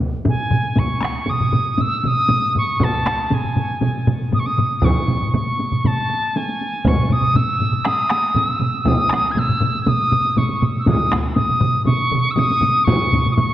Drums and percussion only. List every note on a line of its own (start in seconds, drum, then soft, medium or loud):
0.00 taiko medium
0.00 taiko high soft
0.25 taiko low-mid medium
0.25 taiko mid medium
0.25 taiko high medium
0.37 taiko high soft
0.51 taiko low-mid medium
0.51 taiko mid medium
0.63 taiko high soft
0.76 taiko medium
0.76 taiko low-mid medium
0.76 taiko mid medium
0.76 taiko high medium
0.88 taiko high soft
1.01 taiko rim medium
1.01 taiko soft
1.01 taiko high soft
1.05 taiko rim medium
1.26 taiko low-mid medium
1.26 taiko mid medium
1.26 taiko high medium
1.40 taiko low-mid medium
1.40 taiko mid medium
1.40 taiko high soft
1.52 taiko low-mid medium
1.52 taiko mid medium
1.52 taiko high soft
1.65 taiko high soft
1.78 taiko low-mid medium
1.78 taiko mid medium
1.78 taiko high medium
1.90 taiko high soft
2.03 taiko low-mid medium
2.03 taiko mid medium
2.03 taiko high soft
2.16 taiko high soft
2.29 taiko low-mid medium
2.29 taiko mid medium
2.29 taiko high medium
2.42 taiko high soft
2.55 taiko low-mid medium
2.55 taiko mid medium
2.55 taiko high soft
2.68 taiko high soft
2.80 taiko medium
2.80 taiko low-mid medium
2.80 taiko mid medium
2.80 taiko high medium
2.94 taiko high soft
3.05 taiko rim medium
3.05 taiko medium
3.05 taiko high soft
3.19 taiko high soft
3.31 taiko low-mid medium
3.31 taiko mid medium
3.31 taiko high medium
3.44 taiko low-mid medium
3.44 taiko mid medium
3.44 taiko high soft
3.56 taiko low-mid medium
3.56 taiko mid medium
3.56 taiko high soft
3.69 taiko high soft
3.81 taiko low-mid medium
3.81 taiko mid medium
3.81 taiko high medium
3.94 taiko high soft
4.07 taiko low-mid medium
4.07 taiko mid medium
4.07 taiko high soft
4.20 taiko high soft
4.32 taiko low-mid medium
4.32 taiko mid medium
4.32 taiko high medium
4.46 taiko high soft
4.57 taiko low-mid medium
4.57 taiko mid medium
4.57 taiko high soft
4.72 taiko high soft
4.82 taiko loud
4.82 taiko low-mid medium
4.82 taiko mid medium
4.82 taiko high medium
4.97 taiko high soft
5.08 taiko medium
5.08 taiko low-mid medium
5.08 taiko mid medium
5.08 taiko high soft
5.22 taiko low-mid medium
5.22 taiko mid medium
5.22 taiko high soft
5.34 taiko low-mid medium
5.34 taiko mid medium
5.34 taiko high medium
5.47 taiko high soft
5.59 taiko high soft
5.72 taiko low-mid medium
5.72 taiko mid medium
5.72 taiko high soft
5.84 taiko low-mid medium
5.84 taiko mid loud
5.84 taiko high medium
5.97 taiko high soft
6.10 taiko high soft
6.23 taiko high soft
6.36 taiko high medium
6.49 taiko high soft
6.61 taiko high soft
6.73 taiko high soft
6.84 taiko loud
6.84 taiko low-mid medium
6.84 taiko mid medium
6.84 taiko high medium
6.96 taiko low-mid medium
6.96 taiko mid medium
6.96 taiko high soft
7.09 taiko low-mid medium
7.09 taiko mid medium
7.09 taiko high soft
7.22 taiko low-mid medium
7.22 taiko mid medium
7.22 taiko high soft
7.34 taiko low-mid medium
7.34 taiko mid medium
7.34 taiko high medium
7.49 taiko high soft
7.59 taiko low-mid medium
7.59 taiko mid medium
7.59 taiko high soft
7.71 taiko low-mid medium
7.71 taiko mid medium
7.71 taiko high soft
7.84 taiko rim medium
7.84 taiko high medium
7.99 taiko high soft
8.10 taiko rim medium
8.10 taiko high soft
8.24 taiko high soft
8.34 taiko low-mid medium
8.34 taiko mid medium
8.34 taiko high medium
8.49 taiko high soft
8.59 taiko low-mid medium
8.59 taiko mid medium
8.59 taiko high soft
8.75 taiko high soft
8.85 taiko loud
8.85 taiko low-mid medium
8.85 taiko mid loud
8.85 taiko high medium
9.00 taiko high soft
9.09 taiko rim medium
9.09 taiko medium
9.09 taiko high soft
9.13 taiko rim medium
9.25 taiko high soft
9.35 taiko low-mid medium
9.35 taiko mid medium
9.35 taiko high medium
9.49 taiko low-mid medium
9.49 taiko mid medium
9.49 taiko high soft
9.61 taiko low-mid medium
9.61 taiko mid medium
9.61 taiko high medium
9.75 taiko high soft
9.87 taiko low-mid medium
9.87 taiko mid loud
9.87 taiko high medium
10.00 taiko high soft
10.12 taiko low-mid medium
10.12 taiko mid loud
10.12 taiko high soft
10.25 taiko high soft
10.36 taiko low-mid medium
10.36 taiko mid medium
10.36 taiko high medium
10.49 taiko high soft
10.62 taiko low-mid medium
10.62 taiko mid medium
10.62 taiko high soft
10.76 taiko high soft
10.86 taiko loud
10.86 taiko low-mid medium
10.86 taiko mid medium
10.86 taiko high medium
11.00 taiko high soft
11.12 taiko rim medium
11.12 taiko medium
11.12 taiko high medium
11.24 taiko high soft
11.36 taiko low-mid medium
11.36 taiko mid medium
11.36 taiko high medium
11.49 taiko low-mid medium
11.49 taiko mid medium
11.49 taiko high soft
11.61 taiko low-mid loud
11.61 taiko mid loud
11.61 taiko high medium
11.74 taiko high soft
11.85 taiko low-mid medium
11.85 taiko mid loud
11.85 taiko high medium
12.00 taiko high soft
12.11 taiko low-mid medium
12.11 taiko mid loud
12.11 taiko high medium
12.25 taiko high soft
12.36 taiko low-mid medium
12.36 taiko mid medium
12.36 taiko high medium
12.51 taiko high medium
12.61 taiko low-mid medium
12.61 taiko mid medium
12.61 taiko high medium
12.75 taiko high soft
12.87 taiko loud
12.87 taiko low-mid medium
12.87 taiko mid medium
12.87 taiko high medium
13.01 taiko high soft
13.12 taiko medium
13.12 taiko low-mid medium
13.12 taiko mid medium
13.12 taiko high medium
13.25 taiko low-mid medium
13.25 taiko mid medium
13.25 taiko high soft
13.37 taiko low-mid medium
13.37 taiko mid loud
13.37 taiko high medium
13.50 taiko high soft